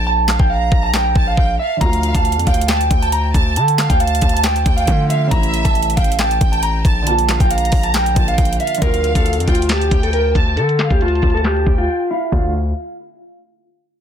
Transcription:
Already playing: 808-style bass A#1
0.07 clean electric guitar A5
0.28 violin section F5, snare, clap
0.39 808-style bass A#1, clean electric guitar G5, kick
0.50 clean electric guitar F5, violin section A#5
0.72 808-style bass A#1, kick
0.83 clean electric guitar A5
0.94 clean electric guitar G5, snare, clap
1.15 808-style bass A#1, violin section A5, kick
1.27 clean electric guitar F5
1.37 808-style bass A#1, violin section G5, kick
1.59 clean electric guitar E5, violin section F5
1.77 grand piano D3 F3
1.81 808-style bass D2, grand piano A3, violin section F5, clean electric guitar A#5, kick, closed hi-hat
1.86 grand piano F4
1.93 closed hi-hat
2.03 closed hi-hat
2.15 808-style bass D2, clean electric guitar A5, kick, closed hi-hat
2.25 closed hi-hat
2.32 closed hi-hat
2.37 808-style bass F2, closed hi-hat
2.47 808-style bass D2, clean electric guitar F5, violin section G5, kick, closed hi-hat
2.54 closed hi-hat
2.61 closed hi-hat
2.68 clean electric guitar G5, violin section A5, snare, clap, closed hi-hat
2.81 closed hi-hat
2.91 808-style bass D2, violin section G5, kick, closed hi-hat
3.02 clean electric guitar A5, closed hi-hat
3.12 clean electric guitar A#5, closed hi-hat
3.34 808-style bass D2, violin section A5, kick, closed hi-hat
3.56 808-style bass D3, clean electric guitar A5, closed hi-hat
3.68 closed hi-hat
3.78 violin section F5, snare, clap, closed hi-hat
3.90 808-style bass D2, clean electric guitar G5, kick, closed hi-hat
4.00 clean electric guitar F5, violin section A5, closed hi-hat
4.07 closed hi-hat
4.15 closed hi-hat
4.21 808-style bass D2, kick, closed hi-hat, open hi-hat
4.29 closed hi-hat
4.34 clean electric guitar A5, closed hi-hat
4.44 clean electric guitar G5, snare, clap, closed hi-hat
4.56 closed hi-hat
4.66 808-style bass D2, violin section G5, kick, closed hi-hat
4.77 clean electric guitar F5, closed hi-hat
4.85 grand piano D3 F3 A3, 808-style bass D3, kick, closed hi-hat
4.90 grand piano F4
5.10 clean electric guitar E5, violin section F5, closed hi-hat
5.27 grand piano C#3 E3, clean electric guitar A#5
5.31 808-style bass A1, grand piano A3, violin section E5, kick, closed hi-hat
5.36 grand piano E4
5.43 closed hi-hat
5.54 closed hi-hat
5.64 808-style bass A1, clean electric guitar A5, kick, closed hi-hat
5.75 closed hi-hat
5.83 closed hi-hat
5.90 closed hi-hat
5.97 808-style bass A1, clean electric guitar F5, violin section G5, kick, closed hi-hat
6.04 closed hi-hat
6.12 closed hi-hat
6.19 clean electric guitar G5, violin section A5, snare, clap, closed hi-hat
6.31 closed hi-hat
6.41 808-style bass A1, violin section G5, kick, closed hi-hat
6.52 clean electric guitar A5, closed hi-hat
6.63 clean electric guitar A#5, closed hi-hat
6.85 808-style bass A#1, violin section A5, kick, closed hi-hat
7.02 grand piano D3 F3
7.07 grand piano A#3, clean electric guitar A5, closed hi-hat
7.11 grand piano F4
7.19 closed hi-hat
7.28 violin section F5, snare, clap, closed hi-hat
7.40 808-style bass A#1, clean electric guitar G5, kick, closed hi-hat
7.51 clean electric guitar F5, violin section A#5, closed hi-hat
7.58 closed hi-hat
7.65 closed hi-hat
7.72 808-style bass A#1, kick, open hi-hat
7.83 clean electric guitar A5, closed hi-hat
7.94 clean electric guitar G5, snare, clap, closed hi-hat
8.06 closed hi-hat
8.14 808-style bass A#1, grand piano D3 F3 A#3, violin section A5, kick, closed hi-hat
8.18 grand piano F4
8.28 clean electric guitar F5, closed hi-hat
8.38 808-style bass A#1, violin section G5, kick, closed hi-hat
8.45 closed hi-hat
8.53 closed hi-hat
8.60 clean electric guitar E5, violin section F5, closed hi-hat
8.67 closed hi-hat
8.75 grand piano D3, closed hi-hat
8.82 808-style bass D2, grand piano F3, clean electric guitar A#4, violin section F5, kick, closed hi-hat
8.86 grand piano F4
8.94 closed hi-hat
9.04 closed hi-hat
9.15 808-style bass D2, clean electric guitar A4, kick, closed hi-hat
9.26 closed hi-hat
9.33 closed hi-hat
9.37 808-style bass F2, closed hi-hat
9.47 808-style bass D2, clean electric guitar F4, violin section G5, kick, closed hi-hat
9.55 closed hi-hat
9.62 closed hi-hat
9.69 clean electric guitar G4, violin section A5, snare, clap, closed hi-hat
9.81 closed hi-hat
9.91 808-style bass D2, violin section G5, kick, closed hi-hat
10.03 clean electric guitar A4, closed hi-hat
10.13 clean electric guitar A#4, closed hi-hat
10.35 808-style bass D2, violin section A5, kick, closed hi-hat
10.57 808-style bass D3, clean electric guitar A4, closed hi-hat
10.69 closed hi-hat
10.79 violin section F5, snare, clap, closed hi-hat
10.90 808-style bass D2, clean electric guitar G4, kick, closed hi-hat
11.01 clean electric guitar F4, violin section A5, closed hi-hat
11.08 closed hi-hat
11.15 closed hi-hat
11.22 808-style bass D2, kick, closed hi-hat, open hi-hat
11.30 closed hi-hat
11.34 clean electric guitar A4, closed hi-hat
11.44 clean electric guitar G4, snare, clap, closed hi-hat
11.57 closed hi-hat
11.66 808-style bass D2, violin section G5, kick, closed hi-hat
11.78 clean electric guitar F4, closed hi-hat
12.10 clean electric guitar E4, violin section F5
12.32 808-style bass D2, grand piano D3 A3 F4, clean electric guitar F4, violin section F5, kick, crash

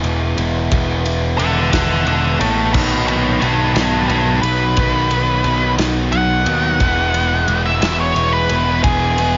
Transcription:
Already playing: distorted electric guitar E3 G#3 B3 E4
0.03 picked electric bass E1, ride
0.37 picked electric bass E1, distorted electric guitar G#3 B3 E4, ride
0.71 picked electric bass E1, distorted electric guitar E3 G#3 B3 E4, kick, ride
1.05 distorted electric guitar G#3 B3 E4, ride
1.38 picked electric bass E1, distorted electric guitar E3 G#3 B3 E4, lead electric guitar D5 F#5, ride
1.72 picked electric bass E1, distorted electric guitar E3 G#3 B3 E4, lead electric guitar D5 F#5, kick, snare, ride
2.06 picked electric bass E1, lead electric guitar D5 F#5, ride
2.39 picked electric bass A1, distorted electric guitar G#3 B3 E4, lead electric guitar E4 C#5, ride
2.73 picked electric bass B1, distorted electric guitar B2 D#3 F#3 B3 D#4, lead electric guitar A4 C#5, kick, crash
3.07 distorted electric guitar F#3 B3 D#4, lead electric guitar A4 C#5, ride
3.41 picked electric bass B1, distorted electric guitar D#3 F#3 B3 D#4, lead electric guitar G4 B4, ride
3.74 picked electric bass B1, distorted electric guitar B2 D#3 F#3 B3 D#4, lead electric guitar G4 B4, snare, ride
4.07 picked electric bass B1, lead electric guitar G4 B4, ride
4.42 picked electric bass B1, distorted electric guitar F#3 B3 D#4, lead electric guitar B4, ride
4.77 picked electric bass B1, distorted electric guitar B2 D#3 F#3 B3 D#4, kick, ride
5.11 distorted electric guitar F#3 B3 D#4, ride
5.44 picked electric bass B1, distorted electric guitar D#3 F#3 B3 D#4, ride
5.78 picked electric bass B1, distorted electric guitar B2 D#3 F#3 B3 D#4, snare, ride
6.12 picked electric bass B1, lead electric guitar F#5, ride
6.45 picked electric bass D#2, distorted electric guitar F#3 B3 D#4, ride
6.80 picked electric bass E1, distorted electric guitar E3 G#3 B3 E4, kick, ride
7.14 distorted electric guitar G#3 B3 E4, ride
7.48 picked electric bass E1, distorted electric guitar E3 G#3 B3 E4, ride
7.66 lead electric guitar E5
7.81 picked electric bass E1, distorted electric guitar E3 G#3 B3 E4, snare, ride
8.00 lead electric guitar C#5
8.16 picked electric bass E1, ride
8.33 lead electric guitar B4
8.49 picked electric bass E1, distorted electric guitar G#3 B3 E4, ride
8.83 picked electric bass E1, distorted electric guitar E3 G#3 B3 E4, lead electric guitar G#4, kick, ride
9.17 distorted electric guitar G#3 B3 E4, ride

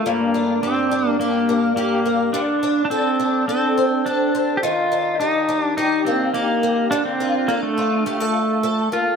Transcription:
Already playing: twelve-string acoustic guitar D3 A#3 F4 A4
0.06 twelve-string acoustic guitar G2, pedal steel guitar A#3
0.34 twelve-string acoustic guitar D4
0.63 pedal steel guitar C4, twelve-string acoustic guitar G4
0.91 twelve-string acoustic guitar D4
1.09 pedal steel guitar A#3
1.20 pedal steel guitar A#3, twelve-string acoustic guitar G4
1.49 twelve-string acoustic guitar A#3
1.76 pedal steel guitar A#3, twelve-string acoustic guitar G4
2.06 twelve-string acoustic guitar A#3
2.33 twelve-string acoustic guitar D3, pedal steel guitar D4
2.63 twelve-string acoustic guitar D4
2.85 pedal steel guitar D4
2.90 pedal steel guitar C4, twelve-string acoustic guitar A4
3.19 twelve-string acoustic guitar D4
3.48 pedal steel guitar C4, twelve-string acoustic guitar A4
3.78 twelve-string acoustic guitar C4
4.06 pedal steel guitar D4, twelve-string acoustic guitar A4
4.35 twelve-string acoustic guitar C4
4.57 pedal steel guitar G4
4.63 twelve-string acoustic guitar D#3, pedal steel guitar F4
4.92 twelve-string acoustic guitar D4
5.20 pedal steel guitar D#4, twelve-string acoustic guitar G4
5.49 twelve-string acoustic guitar D4
5.63 pedal steel guitar D4
5.77 pedal steel guitar D#4, twelve-string acoustic guitar G4
6.05 twelve-string acoustic guitar A#3, pedal steel guitar C4
6.34 pedal steel guitar A#3, twelve-string acoustic guitar G4
6.63 twelve-string acoustic guitar A#3
6.91 twelve-string acoustic guitar D3, pedal steel guitar D4
7.05 pedal steel guitar C4
7.20 twelve-string acoustic guitar F4
7.48 pedal steel guitar A#3, twelve-string acoustic guitar A4
7.63 pedal steel guitar A3
7.78 twelve-string acoustic guitar F4
8.06 pedal steel guitar A3, twelve-string acoustic guitar G4
8.20 twelve-string acoustic guitar A4
8.63 twelve-string acoustic guitar A4
8.92 twelve-string acoustic guitar A#3, pedal steel guitar F4

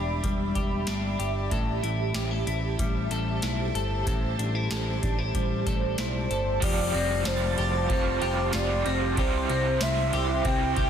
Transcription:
Already playing: picked electric bass E1, clean electric guitar E3 G3 D4 G4, ambient pad G4 D5 E5 B5
0.23 picked electric bass E1, clean electric guitar G3, kick, closed hi-hat
0.55 picked electric bass E1, clean electric guitar G4, kick, closed hi-hat
0.87 picked electric bass G1, clean electric guitar D4, snare, closed hi-hat
1.19 picked electric bass G1, clean electric guitar G4, closed hi-hat
1.51 picked electric bass A1, clean electric guitar A2 A4, ambient pad G4 C5 A5, kick, closed hi-hat
1.83 picked electric bass A1, clean electric guitar E4, closed hi-hat
2.14 picked electric bass A1, clean electric guitar G4, snare, closed hi-hat
2.31 clean electric guitar A4
2.47 picked electric bass A1, clean electric guitar E4, closed hi-hat
2.79 picked electric bass A1, clean electric guitar G3, kick, closed hi-hat
3.10 picked electric bass A1, clean electric guitar A4, closed hi-hat
3.42 picked electric bass B1, clean electric guitar E4, snare, closed hi-hat
3.75 picked electric bass G1, clean electric guitar A4, closed hi-hat
4.06 picked electric bass A1, clean electric guitar A2 A4, ambient pad D5, kick, closed hi-hat
4.38 picked electric bass A1, clean electric guitar D4, closed hi-hat
4.55 clean electric guitar E4
4.70 picked electric bass A1, clean electric guitar A4, snare, closed hi-hat
5.03 picked electric bass A1, clean electric guitar D4, kick, closed hi-hat
5.18 clean electric guitar E4
5.34 picked electric bass A1, clean electric guitar G3, kick, closed hi-hat
5.66 picked electric bass A1, clean electric guitar A4, kick, closed hi-hat
5.98 picked electric bass B1, clean electric guitar E4, soft synth lead C5, snare, closed hi-hat
6.30 picked electric bass G1, clean electric guitar A4, closed hi-hat
6.60 picked electric bass F1, overdriven electric guitar F3 G3 C4, clean electric guitar F3 G4, ambient pad G4 C5 F5 C6, soft synth lead D5, kick, crash, ride
6.66 overdriven electric guitar F4
6.92 picked electric bass F1, clean electric guitar C4, synth texture A5, ride
7.25 picked electric bass F1, clean electric guitar F4, soft synth lead C5, snare, ride, tambourine
7.58 picked electric bass F1, clean electric guitar G4, ride
7.89 picked electric bass F1, overdriven electric guitar F3 G3 C4 F4, clean electric guitar C4, soft synth lead C5, kick, ride
8.22 picked electric bass F1, clean electric guitar G4, ride
8.53 picked electric bass F1, overdriven electric guitar F3 G3 C4 F4, clean electric guitar F4, soft synth lead D5, snare, ride, tambourine
8.85 picked electric bass F1, clean electric guitar C4, ride
9.15 picked electric bass C2, overdriven electric guitar C3 E3 G3, clean electric guitar C3 G4, ambient pad G4 E5, soft synth lead C5, kick, ride
9.20 overdriven electric guitar C4 E4
9.50 picked electric bass C2, clean electric guitar C4, ride
9.81 picked electric bass C2, clean electric guitar E4, soft synth lead E5, snare, ride, tambourine
10.13 picked electric bass C2, clean electric guitar G4, ride
10.44 picked electric bass C2, overdriven electric guitar E3 G3 C4 E4, clean electric guitar C4, soft synth lead G5, kick, ride
10.77 picked electric bass C2, clean electric guitar G4, kick, ride

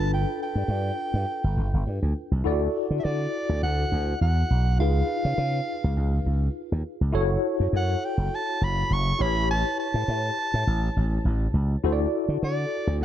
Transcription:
Already playing: slap bass G1, tine electric piano D4 F4 A4 B4, soprano saxophone A5
0.14 soprano saxophone G5
0.43 soprano saxophone G5
0.55 slap bass G2
0.68 slap bass G2
1.14 slap bass G2
1.44 slap bass G1
1.57 slap bass G1
1.74 slap bass G1
1.87 slap bass G2
2.02 slap bass D2
2.31 slap bass C2
2.44 slap bass D2, tine electric piano E4 F#4 A4 D5
2.90 slap bass D3
2.99 soprano saxophone E5
3.04 slap bass D3, soprano saxophone D5
3.49 slap bass D2
3.63 slap bass D2, soprano saxophone F#5
3.92 slap bass D2
4.21 slap bass E2, soprano saxophone F#5
4.50 slap bass B1
4.79 slap bass C#2, tine electric piano D#4 F4 G#4 B4, soprano saxophone F5
5.25 slap bass C#3
5.38 slap bass C#3
5.84 slap bass C#2
5.97 slap bass C#2
6.26 slap bass C#2
6.72 slap bass D#2
7.01 slap bass C#2
7.12 slap bass F#1, tine electric piano E4 F#4 A4 C#5
7.60 slap bass F#2
7.73 slap bass F#2, soprano saxophone F#5
8.05 soprano saxophone G5
8.17 slap bass F#1
8.35 soprano saxophone A5
8.61 slap bass F#1, soprano saxophone B5
8.90 slap bass F#1, soprano saxophone C#6
9.19 slap bass A1, tine electric piano E4 G4 B4 C#5, soprano saxophone B5
9.51 soprano saxophone A5
9.80 soprano saxophone A5
9.94 slap bass A2
10.08 slap bass A2
10.54 slap bass A2
10.67 slap bass A1
10.96 slap bass A1
11.25 slap bass A1
11.54 slap bass C#2
11.84 slap bass D2, tine electric piano E4 F#4 A4 C5
11.92 tine electric piano D5
12.28 slap bass D3
12.43 slap bass D3, soprano saxophone D5
12.87 slap bass D2
13.01 slap bass D2

